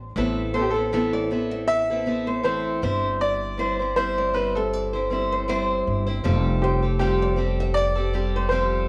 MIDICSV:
0, 0, Header, 1, 5, 480
1, 0, Start_track
1, 0, Tempo, 760456
1, 100, Time_signature, 4, 2, 24, 8
1, 5608, End_track
2, 0, Start_track
2, 0, Title_t, "Nylon-string guitar"
2, 0, Program_c, 0, 24
2, 340, Note_on_c, 0, 72, 87
2, 466, Note_off_c, 0, 72, 0
2, 715, Note_on_c, 0, 74, 81
2, 817, Note_off_c, 0, 74, 0
2, 955, Note_on_c, 0, 76, 81
2, 1060, Note_off_c, 0, 76, 0
2, 1060, Note_on_c, 0, 74, 72
2, 1188, Note_off_c, 0, 74, 0
2, 1434, Note_on_c, 0, 72, 72
2, 1663, Note_off_c, 0, 72, 0
2, 2266, Note_on_c, 0, 72, 73
2, 2392, Note_off_c, 0, 72, 0
2, 2638, Note_on_c, 0, 74, 68
2, 2741, Note_off_c, 0, 74, 0
2, 2882, Note_on_c, 0, 76, 76
2, 2988, Note_off_c, 0, 76, 0
2, 2988, Note_on_c, 0, 74, 84
2, 3112, Note_off_c, 0, 74, 0
2, 3360, Note_on_c, 0, 72, 71
2, 3461, Note_off_c, 0, 72, 0
2, 3468, Note_on_c, 0, 72, 90
2, 3816, Note_off_c, 0, 72, 0
2, 4189, Note_on_c, 0, 72, 82
2, 4312, Note_off_c, 0, 72, 0
2, 4559, Note_on_c, 0, 74, 75
2, 4659, Note_off_c, 0, 74, 0
2, 4798, Note_on_c, 0, 76, 80
2, 4905, Note_off_c, 0, 76, 0
2, 4905, Note_on_c, 0, 74, 75
2, 5028, Note_off_c, 0, 74, 0
2, 5276, Note_on_c, 0, 72, 73
2, 5500, Note_off_c, 0, 72, 0
2, 5608, End_track
3, 0, Start_track
3, 0, Title_t, "Upright piano"
3, 0, Program_c, 1, 0
3, 345, Note_on_c, 1, 69, 77
3, 387, Note_on_c, 1, 67, 72
3, 393, Note_off_c, 1, 69, 0
3, 437, Note_off_c, 1, 67, 0
3, 445, Note_on_c, 1, 69, 87
3, 582, Note_off_c, 1, 69, 0
3, 592, Note_on_c, 1, 69, 93
3, 1058, Note_on_c, 1, 76, 115
3, 1083, Note_off_c, 1, 69, 0
3, 1517, Note_off_c, 1, 76, 0
3, 1542, Note_on_c, 1, 72, 90
3, 1999, Note_off_c, 1, 72, 0
3, 2026, Note_on_c, 1, 74, 97
3, 2501, Note_on_c, 1, 72, 103
3, 2521, Note_off_c, 1, 74, 0
3, 2742, Note_on_c, 1, 71, 90
3, 2751, Note_off_c, 1, 72, 0
3, 2874, Note_on_c, 1, 69, 84
3, 2880, Note_off_c, 1, 71, 0
3, 3678, Note_off_c, 1, 69, 0
3, 4178, Note_on_c, 1, 67, 81
3, 4405, Note_off_c, 1, 67, 0
3, 4414, Note_on_c, 1, 67, 95
3, 4886, Note_on_c, 1, 74, 108
3, 4911, Note_off_c, 1, 67, 0
3, 5346, Note_off_c, 1, 74, 0
3, 5358, Note_on_c, 1, 72, 86
3, 5608, Note_off_c, 1, 72, 0
3, 5608, End_track
4, 0, Start_track
4, 0, Title_t, "Steel-string acoustic guitar"
4, 0, Program_c, 2, 25
4, 0, Note_on_c, 2, 62, 63
4, 63, Note_off_c, 2, 62, 0
4, 102, Note_on_c, 2, 45, 80
4, 104, Note_on_c, 2, 52, 84
4, 109, Note_on_c, 2, 60, 78
4, 110, Note_on_c, 2, 59, 84
4, 110, Note_on_c, 2, 64, 88
4, 113, Note_on_c, 2, 69, 98
4, 335, Note_off_c, 2, 59, 0
4, 340, Note_off_c, 2, 60, 0
4, 342, Note_off_c, 2, 45, 0
4, 343, Note_off_c, 2, 52, 0
4, 343, Note_on_c, 2, 59, 52
4, 346, Note_off_c, 2, 64, 0
4, 347, Note_off_c, 2, 69, 0
4, 348, Note_on_c, 2, 60, 51
4, 353, Note_on_c, 2, 64, 55
4, 358, Note_on_c, 2, 69, 61
4, 458, Note_off_c, 2, 69, 0
4, 465, Note_on_c, 2, 69, 54
4, 466, Note_off_c, 2, 64, 0
4, 471, Note_off_c, 2, 60, 0
4, 474, Note_off_c, 2, 59, 0
4, 474, Note_on_c, 2, 64, 51
4, 479, Note_on_c, 2, 60, 44
4, 481, Note_on_c, 2, 59, 44
4, 578, Note_off_c, 2, 59, 0
4, 578, Note_off_c, 2, 69, 0
4, 580, Note_off_c, 2, 60, 0
4, 582, Note_off_c, 2, 64, 0
4, 582, Note_on_c, 2, 45, 69
4, 585, Note_on_c, 2, 52, 82
4, 586, Note_on_c, 2, 59, 83
4, 588, Note_on_c, 2, 60, 80
4, 591, Note_on_c, 2, 64, 81
4, 593, Note_on_c, 2, 69, 83
4, 817, Note_off_c, 2, 59, 0
4, 821, Note_off_c, 2, 60, 0
4, 823, Note_off_c, 2, 45, 0
4, 824, Note_off_c, 2, 52, 0
4, 824, Note_on_c, 2, 59, 64
4, 825, Note_off_c, 2, 64, 0
4, 828, Note_off_c, 2, 69, 0
4, 829, Note_on_c, 2, 60, 66
4, 833, Note_on_c, 2, 64, 74
4, 838, Note_on_c, 2, 69, 65
4, 1192, Note_off_c, 2, 69, 0
4, 1196, Note_off_c, 2, 64, 0
4, 1197, Note_off_c, 2, 59, 0
4, 1199, Note_off_c, 2, 60, 0
4, 1199, Note_on_c, 2, 69, 57
4, 1203, Note_on_c, 2, 64, 53
4, 1211, Note_on_c, 2, 60, 47
4, 1216, Note_on_c, 2, 59, 42
4, 1292, Note_off_c, 2, 59, 0
4, 1297, Note_off_c, 2, 60, 0
4, 1300, Note_on_c, 2, 59, 60
4, 1302, Note_off_c, 2, 64, 0
4, 1305, Note_on_c, 2, 60, 62
4, 1306, Note_off_c, 2, 69, 0
4, 1309, Note_on_c, 2, 64, 60
4, 1315, Note_on_c, 2, 69, 67
4, 1537, Note_on_c, 2, 45, 85
4, 1538, Note_off_c, 2, 60, 0
4, 1540, Note_off_c, 2, 64, 0
4, 1541, Note_off_c, 2, 69, 0
4, 1542, Note_off_c, 2, 59, 0
4, 1542, Note_on_c, 2, 52, 79
4, 1545, Note_on_c, 2, 60, 79
4, 1548, Note_on_c, 2, 64, 80
4, 1548, Note_on_c, 2, 69, 89
4, 1778, Note_off_c, 2, 60, 0
4, 1780, Note_off_c, 2, 64, 0
4, 1781, Note_off_c, 2, 45, 0
4, 1781, Note_on_c, 2, 55, 66
4, 1784, Note_off_c, 2, 52, 0
4, 1785, Note_on_c, 2, 60, 74
4, 1787, Note_off_c, 2, 69, 0
4, 1788, Note_on_c, 2, 64, 85
4, 1789, Note_on_c, 2, 72, 84
4, 2254, Note_off_c, 2, 55, 0
4, 2257, Note_on_c, 2, 55, 53
4, 2261, Note_off_c, 2, 60, 0
4, 2262, Note_off_c, 2, 64, 0
4, 2263, Note_on_c, 2, 60, 58
4, 2269, Note_on_c, 2, 64, 64
4, 2270, Note_off_c, 2, 72, 0
4, 2272, Note_on_c, 2, 72, 58
4, 2386, Note_off_c, 2, 72, 0
4, 2393, Note_off_c, 2, 55, 0
4, 2394, Note_off_c, 2, 64, 0
4, 2394, Note_on_c, 2, 72, 48
4, 2397, Note_off_c, 2, 60, 0
4, 2402, Note_on_c, 2, 64, 42
4, 2408, Note_on_c, 2, 60, 46
4, 2495, Note_off_c, 2, 60, 0
4, 2499, Note_off_c, 2, 64, 0
4, 2499, Note_on_c, 2, 55, 74
4, 2503, Note_off_c, 2, 72, 0
4, 2503, Note_on_c, 2, 60, 80
4, 2507, Note_on_c, 2, 64, 81
4, 2510, Note_on_c, 2, 72, 89
4, 2728, Note_off_c, 2, 55, 0
4, 2734, Note_off_c, 2, 60, 0
4, 2736, Note_on_c, 2, 55, 65
4, 2742, Note_off_c, 2, 64, 0
4, 2742, Note_on_c, 2, 60, 66
4, 2745, Note_off_c, 2, 72, 0
4, 2750, Note_on_c, 2, 64, 57
4, 2752, Note_on_c, 2, 72, 69
4, 3105, Note_off_c, 2, 72, 0
4, 3113, Note_off_c, 2, 55, 0
4, 3113, Note_on_c, 2, 72, 57
4, 3114, Note_off_c, 2, 64, 0
4, 3116, Note_off_c, 2, 60, 0
4, 3121, Note_on_c, 2, 64, 51
4, 3127, Note_on_c, 2, 60, 44
4, 3218, Note_off_c, 2, 60, 0
4, 3219, Note_on_c, 2, 55, 61
4, 3223, Note_off_c, 2, 72, 0
4, 3225, Note_off_c, 2, 64, 0
4, 3225, Note_on_c, 2, 60, 69
4, 3233, Note_on_c, 2, 64, 68
4, 3235, Note_on_c, 2, 72, 69
4, 3451, Note_off_c, 2, 55, 0
4, 3456, Note_off_c, 2, 60, 0
4, 3458, Note_on_c, 2, 55, 83
4, 3459, Note_off_c, 2, 64, 0
4, 3462, Note_off_c, 2, 72, 0
4, 3464, Note_on_c, 2, 60, 96
4, 3466, Note_on_c, 2, 64, 95
4, 3469, Note_on_c, 2, 72, 99
4, 3820, Note_off_c, 2, 72, 0
4, 3825, Note_off_c, 2, 64, 0
4, 3828, Note_on_c, 2, 72, 70
4, 3833, Note_off_c, 2, 55, 0
4, 3833, Note_off_c, 2, 60, 0
4, 3833, Note_on_c, 2, 64, 64
4, 3841, Note_on_c, 2, 60, 49
4, 3935, Note_off_c, 2, 60, 0
4, 3937, Note_on_c, 2, 53, 86
4, 3940, Note_off_c, 2, 72, 0
4, 3940, Note_on_c, 2, 55, 80
4, 3942, Note_off_c, 2, 64, 0
4, 3942, Note_on_c, 2, 60, 92
4, 3945, Note_on_c, 2, 67, 86
4, 3947, Note_on_c, 2, 69, 100
4, 4300, Note_off_c, 2, 69, 0
4, 4308, Note_on_c, 2, 69, 56
4, 4310, Note_off_c, 2, 67, 0
4, 4312, Note_off_c, 2, 53, 0
4, 4313, Note_off_c, 2, 55, 0
4, 4314, Note_off_c, 2, 60, 0
4, 4317, Note_on_c, 2, 67, 45
4, 4322, Note_on_c, 2, 60, 47
4, 4416, Note_on_c, 2, 53, 85
4, 4417, Note_off_c, 2, 60, 0
4, 4419, Note_off_c, 2, 67, 0
4, 4419, Note_off_c, 2, 69, 0
4, 4421, Note_on_c, 2, 55, 78
4, 4425, Note_on_c, 2, 60, 81
4, 4426, Note_on_c, 2, 69, 87
4, 4427, Note_on_c, 2, 67, 86
4, 4640, Note_off_c, 2, 55, 0
4, 4647, Note_off_c, 2, 60, 0
4, 4647, Note_on_c, 2, 55, 61
4, 4653, Note_off_c, 2, 67, 0
4, 4654, Note_on_c, 2, 60, 62
4, 4657, Note_off_c, 2, 69, 0
4, 4659, Note_off_c, 2, 53, 0
4, 4660, Note_on_c, 2, 67, 71
4, 4665, Note_on_c, 2, 69, 72
4, 5014, Note_off_c, 2, 69, 0
4, 5022, Note_on_c, 2, 69, 58
4, 5023, Note_off_c, 2, 67, 0
4, 5025, Note_off_c, 2, 55, 0
4, 5028, Note_off_c, 2, 60, 0
4, 5031, Note_on_c, 2, 67, 50
4, 5035, Note_on_c, 2, 60, 44
4, 5131, Note_off_c, 2, 60, 0
4, 5134, Note_off_c, 2, 67, 0
4, 5134, Note_off_c, 2, 69, 0
4, 5134, Note_on_c, 2, 55, 65
4, 5138, Note_on_c, 2, 60, 69
4, 5142, Note_on_c, 2, 67, 77
4, 5148, Note_on_c, 2, 69, 68
4, 5366, Note_off_c, 2, 55, 0
4, 5370, Note_off_c, 2, 60, 0
4, 5371, Note_off_c, 2, 67, 0
4, 5372, Note_on_c, 2, 53, 72
4, 5374, Note_on_c, 2, 55, 73
4, 5377, Note_off_c, 2, 69, 0
4, 5378, Note_on_c, 2, 60, 87
4, 5379, Note_on_c, 2, 67, 81
4, 5385, Note_on_c, 2, 69, 89
4, 5608, Note_off_c, 2, 53, 0
4, 5608, Note_off_c, 2, 55, 0
4, 5608, Note_off_c, 2, 60, 0
4, 5608, Note_off_c, 2, 67, 0
4, 5608, Note_off_c, 2, 69, 0
4, 5608, End_track
5, 0, Start_track
5, 0, Title_t, "Upright bass"
5, 0, Program_c, 3, 32
5, 0, Note_on_c, 3, 33, 70
5, 75, Note_off_c, 3, 33, 0
5, 99, Note_on_c, 3, 33, 106
5, 1760, Note_off_c, 3, 33, 0
5, 1786, Note_on_c, 3, 31, 103
5, 3680, Note_off_c, 3, 31, 0
5, 3706, Note_on_c, 3, 31, 79
5, 3926, Note_off_c, 3, 31, 0
5, 3946, Note_on_c, 3, 29, 111
5, 5592, Note_off_c, 3, 29, 0
5, 5608, End_track
0, 0, End_of_file